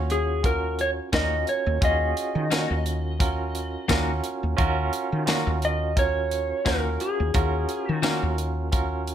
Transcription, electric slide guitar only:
0.12 0.46 G#4 medium
0.46 0.80 A#4 loud
0.81 0.90 C#5 medium
1.15 1.49 D#5 medium
1.49 1.84 C#5 medium
1.85 4.21 D#5 medium
5.65 5.99 D#5 loud
5.99 6.69 C#5 loud
6.66 7.02 A#4 loud
7.01 7.91 G#4 medium
7.91 8.35 F#4 medium

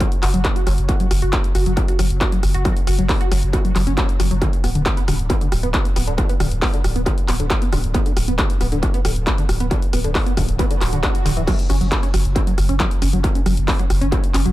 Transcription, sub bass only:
0.23 0.33 F#1 loud
0.34 0.44 F#1 medium
0.67 0.77 F#1 medium
0.78 0.89 F#1 medium
1.11 1.22 F#1 loud
1.22 1.33 F#1 medium
1.55 1.66 F#1 loud
1.66 1.77 F#1 medium
1.99 2.10 F#1 loud
2.10 2.21 F#1 medium
2.43 2.54 F#1 loud
2.54 2.65 F#1 medium
2.87 2.98 F#1 loud
2.99 3.09 F#1 medium
3.31 3.42 F#1 loud
3.43 3.53 F#1 medium
3.76 3.86 F#1 loud
3.87 3.97 F#1 medium
4.20 4.30 F#1 loud
4.31 4.41 F#1 medium
4.64 4.74 D1 medium
4.75 4.86 D1 medium
5.08 5.19 D1 loud
5.19 5.30 D1 medium
5.52 5.63 D1 loud
5.63 5.74 D1 medium
5.96 6.07 D1 loud
6.07 6.18 D1 medium
6.40 6.51 D1 loud
6.51 6.62 D1 medium
6.84 6.95 D1 loud
6.95 7.06 D1 medium
7.28 7.39 D1 loud
7.40 7.50 D1 medium
7.72 7.83 D1 loud
7.84 7.94 D1 medium
8.16 8.27 D1 loud
8.28 8.38 D1 medium
8.61 8.71 D1 loud
8.72 8.83 D1 medium
9.05 9.16 D1 loud
9.16 9.27 D1 medium
9.49 9.60 D1 loud
9.60 9.71 D1 medium
9.93 10.04 D1 loud
10.04 10.15 D1 medium
10.37 10.48 D1 loud
10.48 10.59 D1 medium
10.81 10.92 D1 loud
10.93 11.03 D1 medium
11.26 11.36 D1 loud
11.37 11.47 D1 medium
11.70 11.80 F#1 loud
11.81 11.91 F#1 medium
12.14 12.25 F#1 loud
12.25 12.36 F#1 medium
12.58 12.69 F#1 loud
12.69 12.80 F#1 medium
13.02 13.13 F#1 loud
13.13 13.24 F#1 medium
13.46 13.57 F#1 loud
13.57 13.68 F#1 medium
13.90 14.01 F#1 loud
14.01 14.12 F#1 medium
14.34 14.45 F#1 loud
14.46 14.52 F#1 medium

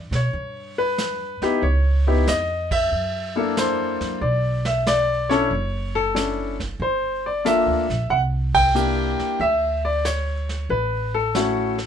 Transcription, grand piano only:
0.15 0.80 C#5 medium
0.78 1.59 B4 medium
1.42 1.60 B3 medium
1.42 1.61 D#4 medium
1.42 1.61 E4 medium
1.42 1.61 G4 medium
1.63 2.29 C#5 medium
2.07 2.25 B3 medium
2.07 2.26 D#4 soft
2.07 2.26 E4 medium
2.07 2.26 G4 medium
2.28 2.68 D#5 medium
2.72 3.38 E5 medium
3.36 4.17 A#3 medium
3.36 4.17 D4 medium
3.36 4.18 E4 medium
3.36 4.18 A4 medium
3.58 4.24 C5 medium
4.22 4.62 D5 medium
4.66 4.85 E5 medium
4.87 5.32 D5 medium
5.29 5.49 C#4 medium
5.29 5.49 D4 medium
5.29 5.49 E4 medium
5.29 5.49 A4 medium
5.29 5.96 C#5 medium
5.95 6.13 A4 loud
6.15 6.55 C#4 soft
6.15 6.55 D4 soft
6.15 6.55 E4 soft
6.15 6.55 A4 soft
6.82 7.26 C5 medium
7.26 7.47 D5 medium
7.45 7.85 A#3 medium
7.45 7.85 D4 medium
7.45 7.84 F4 soft
7.45 7.85 A4 medium
7.45 8.12 E5 medium
8.10 8.20 F#5 medium
8.55 9.43 G5 loud
8.75 9.40 A#3 medium
8.75 9.40 D4 soft
8.75 9.40 E4 soft
8.75 9.40 G4 medium
9.41 9.81 E5 loud
9.85 10.04 D5 medium
10.05 10.66 C#5 medium
10.70 11.15 B4 medium
11.14 11.86 A4 medium
11.35 11.74 A3 medium
11.35 11.74 C#4 soft
11.35 11.74 E4 medium
11.35 11.74 F#4 medium

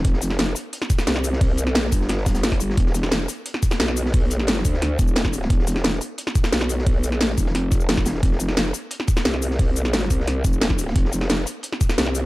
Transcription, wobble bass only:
0.05 0.55 F1 loud
1.07 1.66 C2 loud
1.66 1.91 B1 loud
1.92 2.76 G1 medium
2.77 3.27 E1 loud
3.80 4.64 B1 loud
4.65 4.98 D2 loud
4.99 5.49 E1 loud
5.50 6.00 E1 loud
6.52 7.11 B1 loud
7.11 7.36 A#1 loud
7.38 7.53 E1 medium
7.55 8.04 F1 medium
8.06 8.22 E1 medium
8.23 8.73 F1 loud
9.25 10.09 C2 medium
10.10 10.43 C2 loud
10.45 10.94 F1 loud
10.96 11.45 F1 loud
11.98 12.26 C2 loud

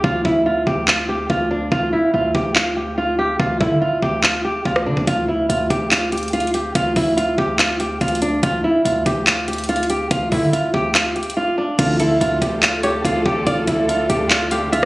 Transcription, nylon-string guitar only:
0.04 0.22 F4 loud
0.25 0.43 E4 medium
0.46 0.64 F4 medium
0.67 0.85 G4 medium
0.88 1.06 F4 medium
1.09 1.27 G4 medium
1.30 1.48 F4 medium
1.51 1.69 D4 medium
1.72 1.90 F4 loud
1.93 2.11 E4 medium
2.14 2.32 F4 medium
2.35 2.53 G4 medium
2.56 2.74 F4 medium
2.77 2.95 G4 medium
2.98 3.16 F4 medium
3.19 3.37 G4 medium
3.40 3.58 F4 loud
3.61 3.79 E4 medium
3.82 4.00 F4 medium
4.02 4.21 G4 medium
4.23 4.41 F4 medium
4.44 4.62 G4 medium
4.65 4.83 F4 medium
4.86 5.04 D4 medium
5.07 5.25 F4 loud
5.28 5.46 E4 medium
5.49 5.67 F4 medium
5.70 5.88 G4 medium
5.91 6.09 F4 medium
6.12 6.30 G4 medium
6.33 6.51 F4 medium
6.54 6.72 G4 medium
6.75 6.93 F4 loud
6.96 7.14 E4 medium
7.17 7.35 F4 medium
7.38 7.56 G4 medium
7.59 7.77 F4 medium
7.80 7.98 G4 medium
8.01 8.19 F4 medium
8.22 8.40 D4 medium
8.43 8.61 F4 loud
8.64 8.82 E4 medium
8.85 9.03 F4 medium
9.06 9.24 G4 medium
9.27 9.45 F4 medium
9.48 9.66 G4 medium
9.69 9.87 F4 medium
9.90 10.08 G4 medium
10.11 10.29 F4 loud
10.32 10.50 E4 medium
10.53 10.71 F4 medium
10.74 10.92 G4 medium
10.95 11.13 F4 medium
11.16 11.34 G4 medium
11.37 11.55 F4 medium
11.58 11.76 D4 medium
11.79 11.97 F4 loud
12.00 12.18 E4 medium
12.21 12.39 F4 medium
12.42 12.60 G4 medium
12.63 12.81 F4 medium
12.84 13.02 G4 medium
13.05 13.23 F4 loud
13.26 13.44 G4 medium
13.47 13.65 F4 loud
13.67 13.85 E4 medium
13.88 14.07 F4 medium
14.09 14.27 G4 medium
14.30 14.48 F4 medium
14.52 14.70 G4 medium
14.72 14.85 F4 loud

